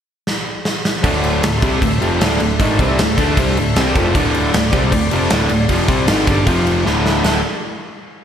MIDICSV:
0, 0, Header, 1, 5, 480
1, 0, Start_track
1, 0, Key_signature, -1, "minor"
1, 0, Tempo, 387847
1, 1290, Time_signature, 4, 2, 24, 8
1, 10200, End_track
2, 0, Start_track
2, 0, Title_t, "Tonewheel organ"
2, 0, Program_c, 0, 16
2, 1280, Note_on_c, 0, 76, 75
2, 1283, Note_on_c, 0, 69, 64
2, 1287, Note_on_c, 0, 62, 73
2, 5096, Note_off_c, 0, 76, 0
2, 5144, Note_on_c, 0, 74, 71
2, 7957, Note_off_c, 0, 69, 0
2, 7959, Note_off_c, 0, 62, 0
2, 7983, Note_off_c, 0, 74, 0
2, 8003, Note_on_c, 0, 67, 74
2, 8004, Note_on_c, 0, 60, 58
2, 8014, Note_on_c, 0, 53, 59
2, 8479, Note_off_c, 0, 67, 0
2, 8480, Note_off_c, 0, 60, 0
2, 8485, Note_off_c, 0, 53, 0
2, 8490, Note_on_c, 0, 62, 77
2, 8494, Note_on_c, 0, 76, 86
2, 8501, Note_on_c, 0, 69, 68
2, 8949, Note_off_c, 0, 69, 0
2, 8951, Note_off_c, 0, 76, 0
2, 8955, Note_off_c, 0, 62, 0
2, 8964, Note_on_c, 0, 69, 61
2, 8965, Note_on_c, 0, 76, 74
2, 8970, Note_on_c, 0, 62, 60
2, 9187, Note_off_c, 0, 69, 0
2, 9187, Note_off_c, 0, 76, 0
2, 9190, Note_off_c, 0, 62, 0
2, 10200, End_track
3, 0, Start_track
3, 0, Title_t, "Distorted electric guitar"
3, 0, Program_c, 1, 30
3, 1268, Note_on_c, 1, 38, 84
3, 1277, Note_on_c, 1, 45, 89
3, 1282, Note_on_c, 1, 50, 97
3, 1754, Note_off_c, 1, 38, 0
3, 1759, Note_off_c, 1, 45, 0
3, 1761, Note_off_c, 1, 50, 0
3, 1769, Note_on_c, 1, 38, 73
3, 1773, Note_on_c, 1, 45, 78
3, 1963, Note_off_c, 1, 38, 0
3, 1965, Note_off_c, 1, 45, 0
3, 2013, Note_on_c, 1, 48, 87
3, 2022, Note_on_c, 1, 60, 91
3, 2023, Note_on_c, 1, 55, 89
3, 2247, Note_off_c, 1, 48, 0
3, 2251, Note_off_c, 1, 60, 0
3, 2252, Note_off_c, 1, 55, 0
3, 2257, Note_on_c, 1, 38, 59
3, 2258, Note_on_c, 1, 45, 76
3, 2448, Note_off_c, 1, 38, 0
3, 2449, Note_off_c, 1, 45, 0
3, 2488, Note_on_c, 1, 41, 87
3, 2495, Note_on_c, 1, 48, 100
3, 2495, Note_on_c, 1, 53, 100
3, 2725, Note_off_c, 1, 41, 0
3, 2729, Note_off_c, 1, 48, 0
3, 2729, Note_off_c, 1, 53, 0
3, 2740, Note_on_c, 1, 38, 101
3, 2745, Note_on_c, 1, 45, 110
3, 2748, Note_on_c, 1, 50, 115
3, 2959, Note_off_c, 1, 38, 0
3, 2965, Note_off_c, 1, 45, 0
3, 2974, Note_on_c, 1, 38, 60
3, 2976, Note_off_c, 1, 50, 0
3, 2980, Note_on_c, 1, 45, 70
3, 3168, Note_off_c, 1, 38, 0
3, 3171, Note_off_c, 1, 45, 0
3, 3216, Note_on_c, 1, 44, 90
3, 3223, Note_on_c, 1, 51, 87
3, 3223, Note_on_c, 1, 56, 101
3, 3450, Note_off_c, 1, 44, 0
3, 3453, Note_off_c, 1, 51, 0
3, 3454, Note_off_c, 1, 56, 0
3, 3467, Note_on_c, 1, 48, 92
3, 3471, Note_on_c, 1, 55, 113
3, 3477, Note_on_c, 1, 60, 115
3, 3695, Note_off_c, 1, 48, 0
3, 3698, Note_off_c, 1, 55, 0
3, 3701, Note_off_c, 1, 60, 0
3, 3711, Note_on_c, 1, 38, 75
3, 3718, Note_on_c, 1, 45, 81
3, 3897, Note_off_c, 1, 38, 0
3, 3900, Note_off_c, 1, 45, 0
3, 3941, Note_on_c, 1, 50, 97
3, 3947, Note_on_c, 1, 57, 83
3, 3953, Note_on_c, 1, 62, 89
3, 4173, Note_off_c, 1, 50, 0
3, 4176, Note_off_c, 1, 57, 0
3, 4179, Note_off_c, 1, 62, 0
3, 4189, Note_on_c, 1, 48, 95
3, 4196, Note_on_c, 1, 55, 115
3, 4198, Note_on_c, 1, 60, 105
3, 4417, Note_off_c, 1, 48, 0
3, 4420, Note_off_c, 1, 55, 0
3, 4421, Note_off_c, 1, 60, 0
3, 4437, Note_on_c, 1, 38, 60
3, 4438, Note_on_c, 1, 45, 67
3, 4620, Note_off_c, 1, 38, 0
3, 4621, Note_off_c, 1, 45, 0
3, 4670, Note_on_c, 1, 48, 91
3, 4679, Note_on_c, 1, 55, 107
3, 4684, Note_on_c, 1, 60, 111
3, 4897, Note_off_c, 1, 48, 0
3, 4902, Note_off_c, 1, 55, 0
3, 4904, Note_off_c, 1, 60, 0
3, 4909, Note_on_c, 1, 41, 88
3, 4911, Note_on_c, 1, 48, 92
3, 4916, Note_on_c, 1, 53, 90
3, 5136, Note_off_c, 1, 41, 0
3, 5138, Note_off_c, 1, 48, 0
3, 5140, Note_off_c, 1, 53, 0
3, 5145, Note_on_c, 1, 38, 89
3, 5154, Note_on_c, 1, 50, 105
3, 5155, Note_on_c, 1, 45, 108
3, 5606, Note_off_c, 1, 38, 0
3, 5606, Note_off_c, 1, 45, 0
3, 5619, Note_off_c, 1, 50, 0
3, 5621, Note_on_c, 1, 38, 74
3, 5621, Note_on_c, 1, 45, 73
3, 5811, Note_off_c, 1, 38, 0
3, 5811, Note_off_c, 1, 45, 0
3, 5849, Note_on_c, 1, 48, 95
3, 5856, Note_on_c, 1, 55, 96
3, 5862, Note_on_c, 1, 60, 93
3, 6083, Note_off_c, 1, 48, 0
3, 6088, Note_on_c, 1, 38, 64
3, 6089, Note_off_c, 1, 55, 0
3, 6092, Note_off_c, 1, 60, 0
3, 6101, Note_on_c, 1, 45, 71
3, 6284, Note_off_c, 1, 38, 0
3, 6290, Note_off_c, 1, 45, 0
3, 6330, Note_on_c, 1, 41, 96
3, 6335, Note_on_c, 1, 48, 99
3, 6345, Note_on_c, 1, 53, 97
3, 6563, Note_off_c, 1, 41, 0
3, 6567, Note_off_c, 1, 48, 0
3, 6567, Note_on_c, 1, 38, 90
3, 6572, Note_off_c, 1, 53, 0
3, 6575, Note_on_c, 1, 45, 105
3, 6579, Note_on_c, 1, 50, 111
3, 6803, Note_off_c, 1, 38, 0
3, 6807, Note_off_c, 1, 45, 0
3, 6809, Note_off_c, 1, 50, 0
3, 6818, Note_on_c, 1, 38, 58
3, 6822, Note_on_c, 1, 45, 68
3, 7008, Note_off_c, 1, 38, 0
3, 7009, Note_off_c, 1, 45, 0
3, 7051, Note_on_c, 1, 41, 92
3, 7060, Note_on_c, 1, 48, 101
3, 7066, Note_on_c, 1, 53, 108
3, 7274, Note_off_c, 1, 48, 0
3, 7284, Note_off_c, 1, 41, 0
3, 7287, Note_off_c, 1, 53, 0
3, 7289, Note_on_c, 1, 48, 95
3, 7291, Note_on_c, 1, 55, 102
3, 7292, Note_on_c, 1, 60, 114
3, 7519, Note_off_c, 1, 48, 0
3, 7519, Note_off_c, 1, 55, 0
3, 7523, Note_off_c, 1, 60, 0
3, 7524, Note_on_c, 1, 44, 89
3, 7524, Note_on_c, 1, 51, 109
3, 7528, Note_on_c, 1, 56, 102
3, 7758, Note_off_c, 1, 44, 0
3, 7760, Note_off_c, 1, 51, 0
3, 7761, Note_off_c, 1, 56, 0
3, 7763, Note_on_c, 1, 43, 81
3, 7767, Note_on_c, 1, 50, 104
3, 7773, Note_on_c, 1, 55, 95
3, 7994, Note_off_c, 1, 43, 0
3, 7999, Note_on_c, 1, 41, 92
3, 8000, Note_off_c, 1, 50, 0
3, 8003, Note_off_c, 1, 55, 0
3, 8009, Note_on_c, 1, 53, 105
3, 8010, Note_on_c, 1, 48, 102
3, 8474, Note_off_c, 1, 41, 0
3, 8479, Note_on_c, 1, 38, 105
3, 8480, Note_off_c, 1, 48, 0
3, 8480, Note_off_c, 1, 53, 0
3, 8486, Note_on_c, 1, 45, 105
3, 8488, Note_on_c, 1, 50, 100
3, 8941, Note_off_c, 1, 38, 0
3, 8948, Note_off_c, 1, 45, 0
3, 8956, Note_on_c, 1, 38, 95
3, 8958, Note_off_c, 1, 50, 0
3, 8962, Note_on_c, 1, 45, 95
3, 8974, Note_on_c, 1, 50, 107
3, 9152, Note_off_c, 1, 38, 0
3, 9155, Note_off_c, 1, 45, 0
3, 9161, Note_off_c, 1, 50, 0
3, 10200, End_track
4, 0, Start_track
4, 0, Title_t, "Picked electric bass"
4, 0, Program_c, 2, 34
4, 1286, Note_on_c, 2, 26, 92
4, 1736, Note_off_c, 2, 26, 0
4, 1773, Note_on_c, 2, 26, 79
4, 1997, Note_off_c, 2, 26, 0
4, 2011, Note_on_c, 2, 36, 104
4, 2236, Note_off_c, 2, 36, 0
4, 2254, Note_on_c, 2, 26, 82
4, 2478, Note_off_c, 2, 26, 0
4, 2493, Note_on_c, 2, 29, 89
4, 2718, Note_off_c, 2, 29, 0
4, 2740, Note_on_c, 2, 26, 100
4, 2962, Note_off_c, 2, 26, 0
4, 2980, Note_on_c, 2, 26, 79
4, 3202, Note_off_c, 2, 26, 0
4, 3215, Note_on_c, 2, 32, 98
4, 3440, Note_off_c, 2, 32, 0
4, 3455, Note_on_c, 2, 36, 97
4, 3680, Note_off_c, 2, 36, 0
4, 3690, Note_on_c, 2, 26, 82
4, 3918, Note_off_c, 2, 26, 0
4, 3937, Note_on_c, 2, 38, 97
4, 4161, Note_off_c, 2, 38, 0
4, 4176, Note_on_c, 2, 36, 94
4, 4401, Note_off_c, 2, 36, 0
4, 4420, Note_on_c, 2, 26, 79
4, 4642, Note_off_c, 2, 26, 0
4, 4653, Note_on_c, 2, 36, 102
4, 4879, Note_off_c, 2, 36, 0
4, 4899, Note_on_c, 2, 29, 102
4, 5122, Note_off_c, 2, 29, 0
4, 5138, Note_on_c, 2, 26, 96
4, 5584, Note_off_c, 2, 26, 0
4, 5611, Note_on_c, 2, 26, 92
4, 5837, Note_off_c, 2, 26, 0
4, 5853, Note_on_c, 2, 36, 104
4, 6077, Note_off_c, 2, 36, 0
4, 6089, Note_on_c, 2, 26, 86
4, 6315, Note_off_c, 2, 26, 0
4, 6336, Note_on_c, 2, 29, 87
4, 6558, Note_off_c, 2, 29, 0
4, 6570, Note_on_c, 2, 26, 109
4, 6795, Note_off_c, 2, 26, 0
4, 6803, Note_on_c, 2, 26, 86
4, 7031, Note_off_c, 2, 26, 0
4, 7046, Note_on_c, 2, 29, 99
4, 7272, Note_off_c, 2, 29, 0
4, 7284, Note_on_c, 2, 36, 104
4, 7510, Note_off_c, 2, 36, 0
4, 7525, Note_on_c, 2, 32, 97
4, 7750, Note_off_c, 2, 32, 0
4, 7767, Note_on_c, 2, 31, 100
4, 7991, Note_off_c, 2, 31, 0
4, 8003, Note_on_c, 2, 29, 102
4, 8450, Note_off_c, 2, 29, 0
4, 8482, Note_on_c, 2, 26, 96
4, 8929, Note_off_c, 2, 26, 0
4, 8954, Note_on_c, 2, 26, 107
4, 9181, Note_off_c, 2, 26, 0
4, 10200, End_track
5, 0, Start_track
5, 0, Title_t, "Drums"
5, 335, Note_on_c, 9, 38, 73
5, 459, Note_off_c, 9, 38, 0
5, 808, Note_on_c, 9, 38, 80
5, 932, Note_off_c, 9, 38, 0
5, 1054, Note_on_c, 9, 38, 99
5, 1178, Note_off_c, 9, 38, 0
5, 1286, Note_on_c, 9, 36, 100
5, 1287, Note_on_c, 9, 49, 80
5, 1410, Note_off_c, 9, 36, 0
5, 1411, Note_off_c, 9, 49, 0
5, 1530, Note_on_c, 9, 49, 60
5, 1654, Note_off_c, 9, 49, 0
5, 1773, Note_on_c, 9, 49, 88
5, 1780, Note_on_c, 9, 38, 125
5, 1896, Note_off_c, 9, 49, 0
5, 1904, Note_off_c, 9, 38, 0
5, 2010, Note_on_c, 9, 36, 114
5, 2014, Note_on_c, 9, 49, 64
5, 2134, Note_off_c, 9, 36, 0
5, 2138, Note_off_c, 9, 49, 0
5, 2251, Note_on_c, 9, 36, 100
5, 2258, Note_on_c, 9, 49, 85
5, 2375, Note_off_c, 9, 36, 0
5, 2382, Note_off_c, 9, 49, 0
5, 2496, Note_on_c, 9, 49, 58
5, 2620, Note_off_c, 9, 49, 0
5, 2735, Note_on_c, 9, 49, 83
5, 2743, Note_on_c, 9, 38, 104
5, 2859, Note_off_c, 9, 49, 0
5, 2866, Note_off_c, 9, 38, 0
5, 2971, Note_on_c, 9, 49, 60
5, 3095, Note_off_c, 9, 49, 0
5, 3213, Note_on_c, 9, 36, 109
5, 3222, Note_on_c, 9, 49, 82
5, 3337, Note_off_c, 9, 36, 0
5, 3346, Note_off_c, 9, 49, 0
5, 3454, Note_on_c, 9, 36, 104
5, 3461, Note_on_c, 9, 49, 58
5, 3578, Note_off_c, 9, 36, 0
5, 3585, Note_off_c, 9, 49, 0
5, 3695, Note_on_c, 9, 49, 84
5, 3703, Note_on_c, 9, 38, 109
5, 3819, Note_off_c, 9, 49, 0
5, 3827, Note_off_c, 9, 38, 0
5, 3934, Note_on_c, 9, 36, 105
5, 3942, Note_on_c, 9, 49, 65
5, 4057, Note_off_c, 9, 36, 0
5, 4066, Note_off_c, 9, 49, 0
5, 4173, Note_on_c, 9, 36, 113
5, 4175, Note_on_c, 9, 49, 80
5, 4297, Note_off_c, 9, 36, 0
5, 4299, Note_off_c, 9, 49, 0
5, 4419, Note_on_c, 9, 49, 55
5, 4542, Note_off_c, 9, 49, 0
5, 4653, Note_on_c, 9, 49, 75
5, 4661, Note_on_c, 9, 38, 107
5, 4777, Note_off_c, 9, 49, 0
5, 4784, Note_off_c, 9, 38, 0
5, 4895, Note_on_c, 9, 36, 101
5, 4901, Note_on_c, 9, 49, 57
5, 5019, Note_off_c, 9, 36, 0
5, 5024, Note_off_c, 9, 49, 0
5, 5134, Note_on_c, 9, 36, 112
5, 5141, Note_on_c, 9, 49, 79
5, 5258, Note_off_c, 9, 36, 0
5, 5265, Note_off_c, 9, 49, 0
5, 5376, Note_on_c, 9, 49, 59
5, 5499, Note_off_c, 9, 49, 0
5, 5617, Note_on_c, 9, 49, 81
5, 5624, Note_on_c, 9, 38, 118
5, 5740, Note_off_c, 9, 49, 0
5, 5748, Note_off_c, 9, 38, 0
5, 5852, Note_on_c, 9, 36, 115
5, 5855, Note_on_c, 9, 49, 65
5, 5976, Note_off_c, 9, 36, 0
5, 5979, Note_off_c, 9, 49, 0
5, 6090, Note_on_c, 9, 36, 92
5, 6092, Note_on_c, 9, 49, 87
5, 6214, Note_off_c, 9, 36, 0
5, 6216, Note_off_c, 9, 49, 0
5, 6326, Note_on_c, 9, 49, 66
5, 6450, Note_off_c, 9, 49, 0
5, 6560, Note_on_c, 9, 49, 81
5, 6568, Note_on_c, 9, 38, 119
5, 6684, Note_off_c, 9, 49, 0
5, 6692, Note_off_c, 9, 38, 0
5, 6797, Note_on_c, 9, 49, 68
5, 6920, Note_off_c, 9, 49, 0
5, 7040, Note_on_c, 9, 49, 85
5, 7044, Note_on_c, 9, 36, 98
5, 7164, Note_off_c, 9, 49, 0
5, 7168, Note_off_c, 9, 36, 0
5, 7279, Note_on_c, 9, 49, 63
5, 7282, Note_on_c, 9, 36, 109
5, 7403, Note_off_c, 9, 49, 0
5, 7406, Note_off_c, 9, 36, 0
5, 7519, Note_on_c, 9, 49, 82
5, 7526, Note_on_c, 9, 38, 115
5, 7642, Note_off_c, 9, 49, 0
5, 7650, Note_off_c, 9, 38, 0
5, 7764, Note_on_c, 9, 36, 114
5, 7765, Note_on_c, 9, 49, 65
5, 7888, Note_off_c, 9, 36, 0
5, 7889, Note_off_c, 9, 49, 0
5, 8003, Note_on_c, 9, 49, 82
5, 8004, Note_on_c, 9, 36, 105
5, 8127, Note_off_c, 9, 49, 0
5, 8128, Note_off_c, 9, 36, 0
5, 8251, Note_on_c, 9, 49, 59
5, 8375, Note_off_c, 9, 49, 0
5, 8493, Note_on_c, 9, 38, 62
5, 8617, Note_off_c, 9, 38, 0
5, 8734, Note_on_c, 9, 38, 85
5, 8858, Note_off_c, 9, 38, 0
5, 8962, Note_on_c, 9, 55, 91
5, 8970, Note_on_c, 9, 38, 107
5, 9086, Note_off_c, 9, 55, 0
5, 9093, Note_off_c, 9, 38, 0
5, 10200, End_track
0, 0, End_of_file